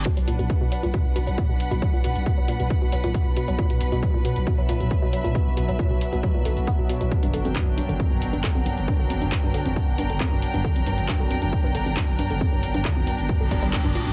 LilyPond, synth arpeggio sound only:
\new Staff \with { instrumentName = "Synth arpeggio sound" } { \clef bass \time 4/4 \key b \minor \tempo 4 = 136 b,16 fis16 ais,16 b,16 r16 b,16 fis16 ais,16 b,16 r16 b,16 fis16 ais,16 b,16 r16 b,16 | fis16 ais,16 b,16 r16 b,16 fis16 ais,16 b,16 r16 b,16 fis16 ais,16 b,16 r16 b,16 fis16 | ais,16 b,16 r16 b,16 fis16 ais,16 b,16 r16 b,16 fis16 ais,16 b,16 r16 b,16 fis16 ais,16 | b,16 r16 b,16 fis16 ais,16 b,16 r16 b,16 fis16 ais,16 d16 r16 b16 b,16 b,16 b,16 |
r16 g,16 d16 eis,16 g,16 r16 g,16 d16 eis,16 g,16 r16 g,16 d16 eis,16 g,16 r16 | g,16 d16 eis,16 g,16 r16 g,16 d16 eis,16 g,16 r16 g,16 d16 eis,16 g,16 r16 g,16 | d16 eis,16 g,16 r16 g,16 d16 eis,16 g,16 r16 g,16 d16 eis,16 g,16 r16 g,16 d16 | eis,16 g,16 r16 g,16 d16 eis,16 g,16 r16 g,16 d16 g16 g16 r16 g,16 bes,16 g,16 | }